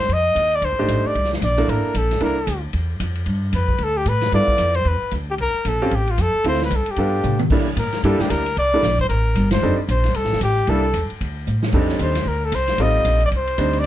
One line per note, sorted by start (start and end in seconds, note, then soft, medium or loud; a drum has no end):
0.00 0.15 C5 loud
0.08 0.34 F2 medium
0.08 kick soft
0.08 ride medium
0.13 0.57 D#5 loud
0.35 0.61 D#2 medium
0.35 kick soft
0.35 hi-hat pedal medium
0.35 ride medium
0.51 ride soft
0.55 0.66 D5 medium
0.62 0.72 D2 medium
0.62 1.09 C5 medium
0.62 kick soft
0.62 ride medium
0.72 0.79 C2 soft
0.79 0.88 A1 medium
0.79 1.13 A3 medium
0.79 1.14 D4 medium
0.79 1.14 D#4 medium
0.79 1.14 G4 medium
0.88 1.03 A1 medium
0.88 kick soft
0.88 hi-hat pedal medium
0.88 ride medium
1.04 1.32 D5 medium
1.04 muted upright bass stroke soft
1.15 1.41 C2 medium
1.15 kick soft
1.15 ride soft
1.24 snare soft
1.33 snare soft
1.41 1.67 A#1 medium
1.41 1.71 D5 medium
1.41 kick soft
1.41 hi-hat pedal medium
1.41 ride medium
1.58 1.93 A#3 medium
1.58 1.92 D4 medium
1.58 1.93 E4 medium
1.58 1.93 A4 medium
1.58 ride soft
1.68 1.83 A1 medium
1.68 1.99 A#4 medium
1.68 kick soft
1.68 ride medium
1.94 2.20 A#1 medium
1.94 2.22 A4 medium
1.94 kick soft
1.94 hi-hat pedal medium
1.94 ride medium
2.11 snare soft
2.11 ride soft
2.20 2.46 C2 medium
2.20 2.35 A#3 medium
2.20 2.35 D4 medium
2.20 2.35 E4 medium
2.20 2.35 A4 medium
2.20 2.62 A#4 medium
2.20 kick soft
2.20 ride medium
2.47 2.73 D2 medium
2.47 kick soft
2.47 hi-hat pedal medium
2.47 ride medium
2.73 2.99 E2 medium
2.73 kick soft
2.73 ride medium
3.00 3.26 F2 medium
3.00 kick soft
3.00 hi-hat pedal medium
3.00 ride medium
3.15 ride soft
3.26 3.52 G2 medium
3.26 kick soft
3.26 ride medium
3.53 3.78 F2 medium
3.53 3.85 B4 medium
3.53 kick soft
3.53 hi-hat pedal soft
3.53 ride medium
3.68 kick soft
3.78 4.05 D2 medium
3.78 kick soft
3.78 ride medium
3.84 3.99 A4 medium
3.97 4.10 G4 medium
4.05 4.31 A2 medium
4.05 4.34 B4 loud
4.05 kick soft
4.05 hi-hat pedal medium
4.05 ride medium
4.21 snare soft
4.21 ride soft
4.32 4.47 G2 medium
4.32 4.73 B3 medium
4.32 4.73 E4 medium
4.32 4.73 F4 medium
4.32 4.73 A4 medium
4.32 4.77 D5 loud
4.32 kick soft
4.32 ride medium
4.48 muted upright bass stroke soft
4.48 kick medium
4.58 4.85 F2 medium
4.58 hi-hat pedal medium
4.58 ride medium
4.74 4.89 C5 medium
4.74 ride soft
4.85 5.00 E2 medium
4.85 5.13 B4 medium
4.85 kick soft
4.85 ride soft
5.02 muted upright bass stroke soft
5.11 5.37 D2 medium
5.11 kick soft
5.11 hi-hat pedal medium
5.11 ride medium
5.31 5.35 G4 medium
5.38 5.53 C2 medium
5.38 5.70 A#4 loud
5.38 kick soft
5.38 ride medium
5.54 muted upright bass stroke soft
5.65 5.91 A#1 medium
5.65 5.97 A4 medium
5.65 kick soft
5.65 hi-hat pedal medium
5.65 ride medium
5.82 5.91 C4 medium
5.82 5.91 C#4 medium
5.82 5.91 F4 medium
5.82 5.91 G4 medium
5.91 6.17 A1 medium
5.91 kick soft
5.91 ride medium
5.95 6.12 G4 medium
6.08 6.23 F4 medium
6.08 ride soft
6.18 6.33 F2 medium
6.18 6.46 A4 medium
6.18 kick soft
6.18 hi-hat pedal medium
6.18 ride medium
6.34 muted upright bass stroke soft
6.44 6.70 D2 medium
6.44 6.59 C4 medium
6.44 6.59 E4 medium
6.44 6.59 F4 medium
6.44 6.60 A4 medium
6.44 6.61 C5 medium
6.44 kick soft
6.44 ride medium
6.53 snare soft
6.62 6.77 B4 medium
6.62 snare soft
6.70 6.86 C2 medium
6.70 kick soft
6.70 hi-hat pedal medium
6.70 ride medium
6.76 6.93 A4 medium
6.86 ride soft
6.91 7.42 G4 medium
6.96 7.23 G2 medium
6.96 7.37 B3 medium
6.96 7.37 D4 medium
6.96 7.37 F4 medium
6.96 7.37 A4 medium
6.96 kick soft
6.96 ride medium
7.23 7.49 A2 medium
7.23 hi-hat pedal medium
7.23 mid tom soft
7.39 high tom medium
7.50 7.76 C3 medium
7.50 7.65 G3 medium
7.50 7.66 A#3 medium
7.50 7.65 D4 medium
7.50 7.66 E4 medium
7.50 7.65 A4 medium
7.50 kick medium
7.50 crash medium
7.77 7.91 A#2 medium
7.77 8.03 A#4 medium
7.77 kick soft
7.77 hi-hat pedal medium
7.77 ride medium
7.92 muted upright bass stroke soft
7.92 snare soft
7.92 ride soft
8.03 8.18 G2 medium
8.03 8.43 G3 medium
8.03 8.43 A#3 medium
8.03 8.43 D4 medium
8.03 8.43 E4 medium
8.03 8.43 G4 medium
8.03 8.22 A4 medium
8.03 kick soft
8.03 ride medium
8.19 8.32 G4 medium
8.19 muted upright bass stroke soft
8.19 snare medium
8.30 8.56 D2 medium
8.30 8.57 A#4 medium
8.30 kick soft
8.30 hi-hat pedal medium
8.30 ride medium
8.46 ride soft
8.57 8.82 C2 medium
8.57 8.97 D5 loud
8.57 kick soft
8.57 ride medium
8.74 8.83 G3 medium
8.74 8.83 A#3 medium
8.74 8.83 D4 medium
8.74 8.83 E4 medium
8.74 8.83 A4 medium
8.83 9.09 A#1 medium
8.83 kick soft
8.83 snare soft
8.83 hi-hat pedal medium
8.83 ride medium
8.99 9.05 C5 medium
8.99 kick medium
8.99 ride soft
9.09 9.35 A1 medium
9.09 9.48 A#4 medium
9.09 kick soft
9.09 ride medium
9.35 9.61 G1 medium
9.35 kick soft
9.35 hi-hat pedal medium
9.35 ride medium
9.51 9.77 C5 medium
9.51 snare medium
9.51 ride medium
9.62 9.77 F1 medium
9.62 9.77 G3 medium
9.62 9.77 C4 medium
9.62 9.77 D4 medium
9.62 9.77 D#4 medium
9.62 9.77 A4 medium
9.78 muted upright bass stroke soft
9.88 10.14 A#1 medium
9.88 10.17 C5 medium
9.88 kick soft
9.88 hi-hat pedal medium
9.88 ride medium
10.04 snare soft
10.04 ride soft
10.14 10.24 C2 medium
10.14 10.42 A4 medium
10.14 kick soft
10.14 ride medium
10.24 10.32 A1 soft
10.24 snare soft
10.32 10.41 F1 medium
10.32 snare soft
10.41 10.67 A1 medium
10.41 10.71 G4 medium
10.41 kick soft
10.41 hi-hat pedal medium
10.41 ride medium
10.67 10.93 C2 medium
10.67 10.82 G3 medium
10.67 10.83 A#3 medium
10.67 10.83 D4 medium
10.67 10.83 E4 medium
10.67 11.11 A4 medium
10.67 10.83 A4 medium
10.67 kick soft
10.67 ride medium
10.94 11.09 E2 medium
10.94 kick soft
10.94 hi-hat pedal medium
10.94 ride medium
11.10 muted upright bass stroke soft
11.10 ride soft
11.21 11.46 D2 medium
11.21 kick soft
11.21 ride medium
11.47 11.72 A2 medium
11.47 hi-hat pedal medium
11.63 snare medium
11.73 11.99 F2 medium
11.73 12.13 G3 medium
11.73 12.13 C4 medium
11.73 12.13 D4 medium
11.73 12.13 D#4 medium
11.73 12.13 A4 medium
11.73 kick medium
11.73 crash medium
11.89 snare soft
11.99 12.25 D#2 medium
11.99 12.29 C5 medium
11.99 kick soft
11.99 hi-hat pedal medium
11.99 ride medium
12.15 snare soft
12.15 ride medium
12.25 12.51 D2 medium
12.25 12.47 A#4 medium
12.25 kick soft
12.45 12.57 A4 medium
12.52 12.77 C2 medium
12.52 12.83 C5 loud
12.52 kick soft
12.52 hi-hat pedal medium
12.52 ride medium
12.67 snare soft
12.67 ride soft
12.78 13.04 A1 medium
12.78 13.19 G3 medium
12.78 13.18 C4 medium
12.78 13.18 D#4 medium
12.78 13.18 F4 medium
12.78 13.19 A4 medium
12.78 13.23 D#5 loud
12.78 kick soft
12.78 ride medium
13.05 13.31 A#1 medium
13.05 kick soft
13.05 hi-hat pedal medium
13.05 ride medium
13.21 ride soft
13.26 13.30 D5 loud
13.31 13.57 C2 medium
13.31 kick soft
13.31 ride medium
13.37 13.81 C5 medium
13.48 ride soft
13.58 13.84 D2 medium
13.58 13.85 G3 medium
13.58 13.85 C4 medium
13.58 13.85 D4 medium
13.58 13.85 D#4 medium
13.58 13.85 C5 medium
13.58 kick soft
13.58 hi-hat pedal medium
13.58 ride medium
13.73 ride soft
13.79 13.86 D5 medium